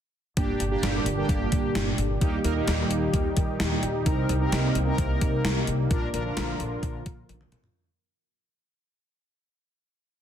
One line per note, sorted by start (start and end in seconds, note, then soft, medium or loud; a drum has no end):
0.37 0.53 G1 loud
0.37 4.03 A#2 medium
0.37 2.20 D3 medium
0.37 5.87 G3 medium
0.37 0.64 A#3 medium
0.37 0.64 D4 medium
0.37 2.20 D4 medium
0.37 0.64 G4 medium
0.37 5.87 G4 medium
0.37 kick loud
0.37 closed hi-hat medium
0.60 0.76 G1 medium
0.60 closed hi-hat medium
0.71 1.07 A#3 medium
0.71 1.07 D4 medium
0.71 1.07 G4 loud
0.83 0.99 G1 medium
0.83 snare loud
0.83 closed hi-hat medium
1.06 1.22 G1 medium
1.06 closed hi-hat medium
1.17 1.89 A#3 medium
1.17 1.89 D4 medium
1.17 1.89 G4 medium
1.29 1.45 G1 loud
1.29 kick medium
1.29 closed hi-hat medium
1.52 1.68 G2 medium
1.52 kick medium
1.52 closed hi-hat medium
1.75 1.92 G1 medium
1.75 snare loud
1.75 closed hi-hat medium
1.98 2.15 G1 medium
1.98 closed hi-hat medium
2.21 2.38 D#2 medium
2.21 4.04 D#3 medium
2.21 2.39 A#3 medium
2.21 2.39 D#4 medium
2.21 5.87 D#4 medium
2.21 2.39 G4 medium
2.21 kick loud
2.21 closed hi-hat medium
2.44 2.61 D#2 loud
2.44 2.53 A#3 medium
2.44 2.53 D#4 medium
2.44 2.53 A#4 medium
2.44 closed hi-hat medium
2.56 3.28 A#3 medium
2.56 3.28 D#4 medium
2.56 3.28 G4 medium
2.68 2.84 D#2 medium
2.68 snare loud
2.68 closed hi-hat medium
2.91 3.07 D#2 medium
2.91 closed hi-hat medium
3.13 3.30 D#2 loud
3.13 kick medium
3.13 closed hi-hat medium
3.37 3.53 D#3 medium
3.37 kick medium
3.37 closed hi-hat medium
3.60 3.76 D#2 loud
3.60 snare loud
3.60 closed hi-hat medium
3.83 3.99 D#2 medium
3.83 closed hi-hat medium
4.06 4.22 C2 loud
4.06 5.89 C3 medium
4.06 7.72 A#3 medium
4.06 4.33 C4 medium
4.06 4.33 D#4 medium
4.06 4.33 A#4 medium
4.06 kick loud
4.06 closed hi-hat medium
4.29 4.45 C2 loud
4.29 closed hi-hat medium
4.41 4.77 C4 medium
4.41 4.77 D#4 medium
4.41 4.77 A#4 medium
4.52 4.68 C2 loud
4.52 snare loud
4.52 closed hi-hat medium
4.75 4.91 C2 loud
4.75 closed hi-hat medium
4.87 5.59 C4 medium
4.87 5.59 D#4 medium
4.87 5.59 A#4 medium
4.98 5.14 C2 loud
4.98 kick medium
4.98 closed hi-hat medium
5.21 5.38 C3 medium
5.21 kick medium
5.21 closed hi-hat medium
5.44 5.61 C2 medium
5.44 snare loud
5.44 closed hi-hat medium
5.67 5.84 C2 medium
5.67 closed hi-hat medium
5.91 6.07 A#1 loud
5.91 7.74 D3 medium
5.91 7.73 F3 medium
5.91 6.09 D4 medium
5.91 6.09 F4 medium
5.91 7.74 F4 medium
5.91 6.09 A#4 medium
5.91 7.74 A#4 medium
5.91 kick loud
5.91 closed hi-hat medium
6.14 6.30 A#1 medium
6.14 6.23 D4 medium
6.14 6.23 F4 medium
6.14 6.23 A#4 loud
6.14 closed hi-hat medium
6.25 6.97 D4 medium
6.25 6.97 F4 medium
6.25 6.97 A#4 medium
6.37 6.53 A#1 medium
6.37 snare loud
6.37 closed hi-hat medium
6.60 6.76 A#1 loud
6.60 closed hi-hat medium
6.83 6.99 A#1 medium
6.83 kick medium
6.83 closed hi-hat medium
7.06 7.22 A#2 loud
7.06 kick medium
7.06 closed hi-hat medium
7.29 7.45 A#1 loud
7.29 closed hi-hat medium
7.29 high tom medium
7.41 mid tom medium
7.52 7.68 A#1 medium
7.52 closed hi-hat medium
7.52 mid tom medium
7.64 floor tom medium